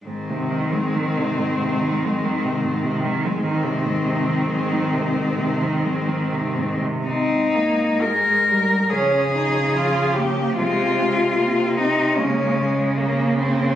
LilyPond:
<<
  \new Staff \with { instrumentName = "Cello" } { \time 4/4 \key aes \major \tempo 4 = 71 c'1 | c'2.~ c'8. r16 | ees'4 bes'4 aes'4. g'8 | f'4. ees'8 des'4. r8 | }
  \new Staff \with { instrumentName = "Cello" } { \clef bass \time 4/4 \key aes \major ees1 | ees2.~ ees8. r16 | c'8 bes8 aes8 g8 f4 f4 | aes8 aes8 bes8 c'8 aes4 bes8 bes8 | }
  \new Staff \with { instrumentName = "Cello" } { \clef bass \time 4/4 \key aes \major aes,16 c16 ees16 aes16 ees16 c16 aes,16 c16 ees16 aes16 ees16 c16 aes,16 c16 ees16 aes16 | ees16 c16 aes,16 c16 ees16 aes16 ees16 c16 aes,16 c16 ees16 aes16 ees16 c16 aes,16 c16 | r2 des'8 ees'8 f'8 bes8 | c'8 aes8 c'4 bes8 aes8 bes8 c'8 | }
  \new Staff \with { instrumentName = "Cello" } { \clef bass \time 4/4 \key aes \major aes,1 | aes,2.~ aes,8. r16 | aes,2 des2 | c2 des2 | }
>>